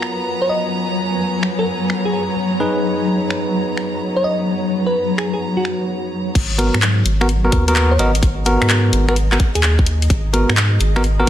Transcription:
Already playing: F#3 B3 F4 F#4 A#4 C#5 G#5 A#5
0.02 finger snap
0.42 C#5
0.49 D#5
1.43 finger snap
1.59 A#4
1.90 finger snap
2.05 G#4
2.13 G#4
2.60 D#4 G#4 B4
3.30 finger snap
3.77 finger snap
4.16 C#5
4.24 D#5
4.86 B4
5.18 G#4, finger snap
5.33 G#4
5.57 F#4
5.65 finger snap
6.35 G#1 G#4, kick, closed hi-hat, crash
6.54 D#5
6.59 B3 F#4 A#4, closed hi-hat
6.74 G#2, finger snap
6.82 A#5, clap, closed hi-hat
7.05 G#1, closed hi-hat
7.21 B3 F#4 A#4, finger snap
7.29 closed hi-hat
7.45 B3 F#4 A#4
7.52 D#2, kick, closed hi-hat
7.68 B3 F#4 A#4, closed hi-hat
7.76 B3 F#4 A#4, clap, closed hi-hat
7.91 C#5
7.99 G#1 B3 F#4 A#4 D#5, closed hi-hat
8.15 closed hi-hat
8.23 kick, closed hi-hat
8.46 B3 F#4 A#4, closed hi-hat
8.62 G#2, finger snap, closed hi-hat
8.70 clap, closed hi-hat
8.93 G#1, closed hi-hat
9.08 B3 F#4 A#4 B4, finger snap
9.16 closed hi-hat
9.32 B3 F#4 A#4, clap
9.40 kick, closed hi-hat
9.55 D#2 G#4, closed hi-hat
9.63 clap, closed hi-hat
9.79 kick
9.86 closed hi-hat
10.02 closed hi-hat
10.10 G#1, kick, closed hi-hat
10.14 B5
10.33 B3 F#4 A#4, closed hi-hat
10.49 G#2, finger snap
10.57 clap, closed hi-hat
10.80 G#1, closed hi-hat
10.96 B3 F#4 A#4, finger snap
11.04 closed hi-hat
11.20 B3 F#4 A#4

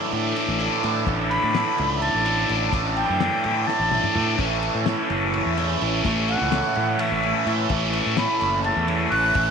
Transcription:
Already playing: A2 D3 E3 A3 D4 E4 A4 E5
0.12 A2 A3 D4 E4, ride
0.36 ride
0.48 A1
0.58 A3 D4 E4, ride
0.83 A2 D3 A3 D4 E4, snare, ride
1.06 A1 A2 D3 A3 D4 E4, kick, ride
1.30 B5, ride
1.43 A2
1.54 A2 D3 A3 D4 E4, snare, ride
1.78 C#2 A3 D4 E4, ride
2.02 A5, ride
2.15 A1
2.24 A3 D4 E4, ride
2.49 A1 D3 A3 D4 E4, ride
2.73 A1 A2 D3 A3 D4 E4, kick, ride
2.96 G5, ride
3.10 F#2
3.19 A2 D3 A3 D4 E4, snare, ride
3.43 A2 A3 D4 E4, ride
3.67 A5, snare
3.79 A1
3.91 A3 D4 E4, high tom
4.04 mid tom
4.14 A2 D3 A3 D4 E4, mid tom
4.37 A1 A2 E3 A3 C#4 E4 A4 E5, kick, crash
4.62 ride
4.75 A2
4.85 A2 E3 A3 C#4 E4, snare, ride
5.09 F#1 A3 C#4 E4, snare, ride
5.34 ride
5.46 E2
5.57 A3 C#4 E4, snare, ride
5.81 A1 E3 A3 C#4 E4, ride
6.04 A1 A2 E3 A3 C#4 E4, kick, ride
6.28 F#5, ride
6.41 C#2
6.51 A2 E3 A3 C#4 E4, snare, ride
6.75 A2 A3 C#4 E4, ride
6.99 E5, ride
7.12 A1
7.22 A3 C#4 E4, ride
7.46 A2 E3 A3 C#4 E4, ride
7.70 A1 A2 E3 A3 C#4 E4, kick, ride
7.93 ride
8.06 A2
8.17 A2 E3 A3 C#4 E4 B5, snare, ride
8.41 F#1 C#4 E4, ride
8.45 A3
8.64 A5, ride
8.76 E2
8.88 A3 C#4 E4, ride
9.11 A1 E3 A3 C#4 F#6, ride
9.15 E4
9.35 A1 A2 E3 A3 C#4 E4, kick, ride

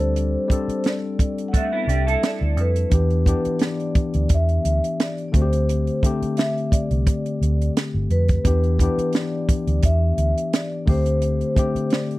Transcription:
Already playing: D2 G3 C4 D4 A4 C5
0.00 closed hi-hat
0.16 closed hi-hat
0.48 G3 C4 D4, kick, closed hi-hat
0.52 A4
0.68 muted fingered electric bass stroke, closed hi-hat
0.84 snare, closed hi-hat
0.88 D5
1.19 kick, closed hi-hat
1.38 closed hi-hat
1.48 F#5
1.53 A3 D4 E5, kick, closed hi-hat
1.72 B3 E4
1.87 C2 D4 G4, closed hi-hat
2.07 E4 A4, closed hi-hat
2.23 D5, snare, closed hi-hat
2.41 D2
2.57 F2 B4, closed hi-hat
2.76 closed hi-hat
2.90 E2 E3 B3 D4 G4, kick, closed hi-hat
3.11 closed hi-hat
3.26 E3 B3 D4 G4, kick, closed hi-hat
3.45 muted fingered electric bass stroke, closed hi-hat
3.59 snare, closed hi-hat
3.65 D5
3.80 closed hi-hat
3.95 muted fingered electric bass stroke, kick, closed hi-hat
4.14 D2, closed hi-hat
4.29 E2, kick, closed hi-hat
4.34 E5
4.49 closed hi-hat
4.65 D2, closed hi-hat
4.84 closed hi-hat
5.00 D5, snare, closed hi-hat
5.18 closed hi-hat
5.28 D3 D5
5.33 D2 A3 C4 F#4 C5, kick, closed hi-hat
5.42 G4
5.53 closed hi-hat
5.69 closed hi-hat
5.87 closed hi-hat
6.03 D3 A3 C4 G4, kick, closed hi-hat
6.22 muted fingered electric bass stroke, closed hi-hat
6.37 E5, snare, closed hi-hat
6.58 closed hi-hat
6.71 D5, muted fingered electric bass stroke, kick, closed hi-hat
6.91 C2, closed hi-hat
7.07 kick, closed hi-hat
7.26 closed hi-hat
7.41 D2, closed hi-hat
7.62 closed hi-hat
7.77 snare, closed hi-hat
7.94 G1
8.10 F2 B4, closed hi-hat
8.29 kick, closed hi-hat
8.44 E2 E3 B3 D4 G4, kick, closed hi-hat
8.64 closed hi-hat
8.79 E3 B3 D4, kick, closed hi-hat
8.83 G4
8.98 muted fingered electric bass stroke, closed hi-hat
9.13 D5, snare, closed hi-hat
9.49 muted fingered electric bass stroke, kick, closed hi-hat
9.67 D2, closed hi-hat
9.83 E2 E5, kick, closed hi-hat
10.17 D2, closed hi-hat
10.38 closed hi-hat
10.53 D5, snare, closed hi-hat
10.86 D2 D3 A3 C4 G4, kick, open hi-hat
10.90 C5
11.06 closed hi-hat
11.22 closed hi-hat
11.41 closed hi-hat
11.55 D3 A3 C4 G4, kick, closed hi-hat
11.75 muted fingered electric bass stroke, closed hi-hat
11.90 D5, snare, closed hi-hat
12.11 closed hi-hat

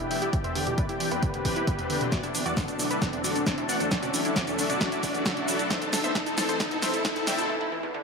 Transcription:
Already playing: riser
0.10 E3 B3 D4 G4 E5 G5, open hi-hat
0.22 E4 G4, closed hi-hat
0.33 E3 C4 D4 G4, kick, closed hi-hat
0.44 E2 C5 E5, closed hi-hat
0.55 D3 G4, open hi-hat
0.67 B2 E3 C4 D4 G4, closed hi-hat
0.78 E3 B4 D5, kick, closed hi-hat
0.89 E3 C4 D4 E4 G4, closed hi-hat
1.00 E3 G4, open hi-hat
1.11 E2 E3 C4 D4 G4 B4, closed hi-hat
1.23 D3, kick, closed hi-hat
1.34 B2, closed hi-hat
1.45 E3 C4 D4 G4, kick, open hi-hat
1.56 E4, closed hi-hat
1.67 E3 C4 D4 G4, kick, closed hi-hat
1.79 E2, closed hi-hat
1.90 D3 E3 C4 D4 G4, open hi-hat
2.01 B2, closed hi-hat
2.12 E3 F#3 A3 D4 F#4 A4 D5, kick, snare, closed hi-hat, shaker
2.23 D4 E4, closed hi-hat, shaker
2.34 E3 D4, open hi-hat, shaker
2.46 E2 F#3 A3 D4 F#4 A4 D5, closed hi-hat, shaker
2.57 D3 D4, kick, snare, closed hi-hat, shaker
2.68 B2 F#3 A3 D4 A4, closed hi-hat, shaker
2.79 E3 D4, open hi-hat, shaker
2.90 F#3 A3 D4 E4 A4 B4, closed hi-hat, shaker
3.02 E3 D4, kick, snare, closed hi-hat, shaker
3.13 E2 D4, closed hi-hat
3.24 D3 F#3 A3 D4 F#4 A4 D5, open hi-hat, shaker
3.35 B2 D4, closed hi-hat, shaker
3.47 E3 F#3 A3 D4 A4, kick, snare, closed hi-hat, shaker
3.58 D4 E4, closed hi-hat
3.69 E3 F#3 A3 D4 A4 D5 F#5, open hi-hat, shaker
3.80 E2 D4, closed hi-hat, shaker
3.91 D3 F#3 A3 D4 E4 A4, kick, snare, closed hi-hat, shaker
4.02 B2 F#4 D5, closed hi-hat, shaker
4.14 E3 D4, open hi-hat, shaker
4.25 F#3 A3 D4 E4 A4, closed hi-hat, shaker
4.36 E3 F#4 D5, kick, snare, closed hi-hat, shaker
4.47 E2 F#3 A3 D4 E4 A4, closed hi-hat, shaker
4.58 D3 D4, open hi-hat, shaker
4.69 B2 F#3 A3 E4 F#4 A4 D5, closed hi-hat, shaker
4.81 E3, kick, snare, closed hi-hat, shaker
4.92 E4, closed hi-hat, shaker
5.03 E3 F#3 A3 E4 A4, kick, open hi-hat, shaker
5.14 E2, closed hi-hat, shaker
5.25 D3 F#3 A3 E4 A4, kick, snare, closed hi-hat, shaker
5.37 B2, closed hi-hat
5.48 E3 F#3 A3 E4 A4, open hi-hat, shaker
5.59 E4, closed hi-hat, shaker
5.70 E3 A3 C4 A4 C5 E5, kick, snare, closed hi-hat, shaker
5.82 E2 A4, closed hi-hat, shaker
5.93 D3 A4, snare, open hi-hat, shaker
6.04 B2 E3 A3 C4 A4 C5 E5, closed hi-hat, shaker
6.15 E3 A4, kick, snare, closed hi-hat, shaker
6.26 E3 A3 C4 E4 A4, closed hi-hat, shaker
6.37 E3 A4, snare, open hi-hat, shaker
6.49 E2 E3 A3 C4 A4 C5, closed hi-hat, shaker
6.60 D3 A4, kick, snare, closed hi-hat, shaker
6.71 B2 A4, closed hi-hat
6.82 E3 A3 C4 A4 C5 E5, snare, open hi-hat, shaker
6.94 E4 A4, closed hi-hat, shaker
7.05 E3 A3 C4 A4, kick, snare, closed hi-hat, shaker
7.16 E2 A4, closed hi-hat
7.27 D3 E3 A3 C4 A4 E5 G5, snare, open hi-hat, shaker
7.38 B2 A4, closed hi-hat, shaker
7.50 E3
7.61 E4
7.72 E3
7.83 E2
7.94 D3

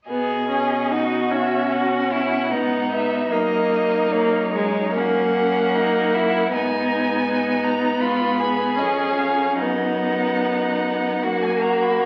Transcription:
0.09 B2 B3 G#4 D#5
0.50 C#4
0.91 D#4 F#4
1.31 C#4 E5
1.72 F#4 F#5
2.12 E4
2.51 G#2 B3 D#4
2.92 B3 E5
3.32 F#2 A#3 D#4 D#5
4.11 A#3 C#5
4.54 G#3
4.96 A#3 C#4 F#5
5.37 C#4
5.75 D#4
6.14 E4
6.53 G#2 B3 D#4 G#5
7.28 D#4
7.64 A#5
8.00 G#2 F4 B5
8.39 G#4
8.78 F2 C#4 D#5
9.18 F5
9.59 F#2 B3 D#4 F#5
11.22 F#2 A#3 F#4
11.42 G#5
11.61 A#5
11.82 B5
12.02 A#5

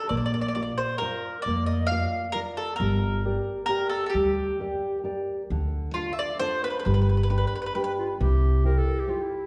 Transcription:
0.09 A#1 A#3 D5
0.17 D5
0.26 D5
0.34 D5
0.41 D5
0.48 D5
0.55 F4 A#4 D5
0.63 D5
0.78 C5
0.98 F4 A#4
1.03 D5
1.42 F2 D5
1.47 A#3
1.66 D#5
1.87 F5
1.91 F4 A#4 D5
2.32 F4 A#4 D5
2.57 A4
2.76 A#4
2.80 G1 G3
3.25 G4 A#4 D5
3.66 G4 A#4 D5
3.90 A4
4.06 G4 A4
4.14 D2 G3
4.60 G4 A#4 D5
5.04 G4 A#4 D5
5.50 D2 D3
5.94 D4 F4 A4
6.13 E5
6.19 D5
6.40 D4 F4 A4 C5
6.64 B4
6.70 B4
6.79 B4
6.85 G1 G3 B4
6.94 B4
7.02 B4
7.09 B4
7.17 B4
7.23 B4
7.30 D4 G4 B4
7.38 B4
7.47 B4
7.56 B4
7.62 B4
7.66 B4
7.75 D4 G4 B4
7.84 B4
7.99 F4
8.20 C2 C3 G4
8.64 E4 G4 A#4 C5
8.78 A4
9.00 G4
9.07 E4 F4 G4 C5
9.22 E4

